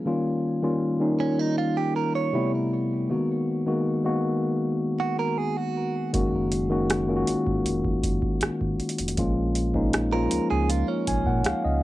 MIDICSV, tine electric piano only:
0, 0, Header, 1, 2, 480
1, 0, Start_track
1, 0, Tempo, 759494
1, 39, Time_signature, 4, 2, 24, 8
1, 7477, End_track
2, 0, Start_track
2, 0, Title_t, "Tine electric piano"
2, 0, Program_c, 0, 4
2, 0, Control_c, 0, 64, 127
2, 34, Note_on_c, 0, 51, 76
2, 38, Note_on_c, 0, 55, 74
2, 40, Note_on_c, 0, 58, 67
2, 43, Note_on_c, 0, 61, 73
2, 47, Control_c, 0, 64, 0
2, 47, Note_on_c, 0, 65, 84
2, 174, Control_c, 0, 64, 127
2, 352, Note_off_c, 0, 51, 0
2, 354, Note_off_c, 0, 55, 0
2, 356, Note_off_c, 0, 58, 0
2, 357, Note_off_c, 0, 61, 0
2, 359, Note_off_c, 0, 65, 0
2, 393, Note_on_c, 0, 51, 76
2, 397, Note_on_c, 0, 55, 74
2, 399, Note_on_c, 0, 58, 69
2, 402, Note_on_c, 0, 61, 69
2, 406, Note_on_c, 0, 65, 87
2, 607, Note_off_c, 0, 51, 0
2, 609, Note_off_c, 0, 55, 0
2, 610, Note_off_c, 0, 58, 0
2, 611, Note_off_c, 0, 61, 0
2, 613, Note_off_c, 0, 65, 0
2, 631, Note_on_c, 0, 51, 81
2, 634, Note_on_c, 0, 55, 69
2, 637, Note_on_c, 0, 58, 76
2, 640, Note_on_c, 0, 61, 76
2, 643, Note_on_c, 0, 63, 85
2, 1467, Note_off_c, 0, 55, 0
2, 1472, Note_on_c, 0, 48, 91
2, 1475, Note_off_c, 0, 51, 0
2, 1475, Note_on_c, 0, 55, 75
2, 1478, Note_off_c, 0, 58, 0
2, 1478, Note_on_c, 0, 57, 81
2, 1480, Note_off_c, 0, 61, 0
2, 1481, Note_off_c, 0, 63, 0
2, 1481, Note_on_c, 0, 59, 84
2, 1484, Note_on_c, 0, 64, 95
2, 1489, Control_c, 0, 64, 0
2, 1587, Control_c, 0, 64, 127
2, 1897, Note_off_c, 0, 48, 0
2, 1898, Note_off_c, 0, 55, 0
2, 1900, Note_off_c, 0, 57, 0
2, 1901, Note_off_c, 0, 59, 0
2, 1903, Note_off_c, 0, 64, 0
2, 1954, Note_on_c, 0, 51, 79
2, 1957, Note_on_c, 0, 56, 73
2, 1961, Note_on_c, 0, 58, 70
2, 1964, Note_on_c, 0, 59, 70
2, 1966, Control_c, 0, 64, 0
2, 1966, Note_on_c, 0, 66, 85
2, 2060, Control_c, 0, 64, 127
2, 2273, Note_off_c, 0, 51, 0
2, 2274, Note_off_c, 0, 56, 0
2, 2276, Note_off_c, 0, 58, 0
2, 2278, Note_off_c, 0, 59, 0
2, 2279, Note_off_c, 0, 66, 0
2, 2314, Note_on_c, 0, 51, 79
2, 2317, Note_on_c, 0, 56, 74
2, 2320, Note_on_c, 0, 58, 72
2, 2323, Note_on_c, 0, 59, 69
2, 2325, Note_on_c, 0, 66, 82
2, 2527, Note_off_c, 0, 51, 0
2, 2529, Note_off_c, 0, 56, 0
2, 2530, Note_off_c, 0, 58, 0
2, 2532, Note_off_c, 0, 59, 0
2, 2533, Note_off_c, 0, 66, 0
2, 2555, Note_on_c, 0, 51, 78
2, 2557, Note_on_c, 0, 56, 70
2, 2559, Note_on_c, 0, 58, 72
2, 2563, Note_on_c, 0, 59, 69
2, 2565, Note_on_c, 0, 66, 91
2, 3399, Note_off_c, 0, 51, 0
2, 3400, Note_off_c, 0, 56, 0
2, 3401, Note_off_c, 0, 58, 0
2, 3403, Note_off_c, 0, 59, 0
2, 3405, Note_off_c, 0, 66, 0
2, 3873, Note_on_c, 0, 51, 75
2, 3876, Note_on_c, 0, 56, 69
2, 3879, Note_on_c, 0, 58, 70
2, 3882, Note_on_c, 0, 61, 67
2, 3885, Note_on_c, 0, 66, 86
2, 3888, Control_c, 0, 64, 0
2, 4014, Control_c, 0, 64, 127
2, 4192, Note_off_c, 0, 51, 0
2, 4194, Note_off_c, 0, 56, 0
2, 4195, Note_off_c, 0, 58, 0
2, 4197, Note_off_c, 0, 61, 0
2, 4198, Note_off_c, 0, 66, 0
2, 4231, Note_on_c, 0, 51, 82
2, 4234, Note_on_c, 0, 56, 70
2, 4237, Note_on_c, 0, 58, 69
2, 4240, Note_on_c, 0, 61, 69
2, 4244, Note_on_c, 0, 66, 90
2, 4446, Note_off_c, 0, 51, 0
2, 4447, Note_off_c, 0, 56, 0
2, 4449, Note_off_c, 0, 58, 0
2, 4450, Note_off_c, 0, 61, 0
2, 4452, Note_off_c, 0, 66, 0
2, 4474, Note_on_c, 0, 51, 74
2, 4476, Note_on_c, 0, 56, 70
2, 4480, Note_on_c, 0, 58, 73
2, 4482, Note_on_c, 0, 61, 69
2, 4486, Note_on_c, 0, 65, 69
2, 4524, Note_off_c, 0, 65, 0
2, 4528, Note_on_c, 0, 66, 86
2, 5319, Note_off_c, 0, 51, 0
2, 5320, Note_off_c, 0, 56, 0
2, 5322, Note_off_c, 0, 58, 0
2, 5323, Note_off_c, 0, 61, 0
2, 5346, Note_off_c, 0, 66, 0
2, 5796, Note_on_c, 0, 53, 75
2, 5800, Note_on_c, 0, 56, 70
2, 5803, Note_on_c, 0, 58, 68
2, 5805, Note_on_c, 0, 61, 70
2, 5806, Control_c, 0, 64, 0
2, 5809, Note_on_c, 0, 65, 88
2, 5934, Control_c, 0, 64, 127
2, 6114, Note_off_c, 0, 53, 0
2, 6115, Note_off_c, 0, 56, 0
2, 6117, Note_off_c, 0, 58, 0
2, 6118, Note_off_c, 0, 61, 0
2, 6120, Note_off_c, 0, 65, 0
2, 6154, Note_on_c, 0, 53, 73
2, 6158, Note_on_c, 0, 56, 72
2, 6162, Note_on_c, 0, 58, 70
2, 6165, Note_on_c, 0, 61, 71
2, 6167, Note_on_c, 0, 63, 88
2, 6367, Note_off_c, 0, 53, 0
2, 6369, Note_off_c, 0, 56, 0
2, 6371, Note_off_c, 0, 58, 0
2, 6373, Note_off_c, 0, 61, 0
2, 6374, Note_off_c, 0, 63, 0
2, 6395, Note_on_c, 0, 53, 76
2, 6398, Note_on_c, 0, 56, 69
2, 6400, Note_on_c, 0, 58, 73
2, 6404, Note_on_c, 0, 61, 68
2, 6407, Note_on_c, 0, 65, 89
2, 7000, Note_on_c, 0, 80, 74
2, 7111, Note_off_c, 0, 80, 0
2, 7119, Note_on_c, 0, 78, 68
2, 7231, Note_off_c, 0, 78, 0
2, 7239, Note_off_c, 0, 53, 0
2, 7240, Note_on_c, 0, 77, 68
2, 7241, Note_off_c, 0, 56, 0
2, 7242, Note_off_c, 0, 58, 0
2, 7244, Note_off_c, 0, 61, 0
2, 7245, Note_off_c, 0, 65, 0
2, 7352, Note_off_c, 0, 77, 0
2, 7360, Note_on_c, 0, 75, 67
2, 7471, Note_off_c, 0, 75, 0
2, 7477, End_track
0, 0, End_of_file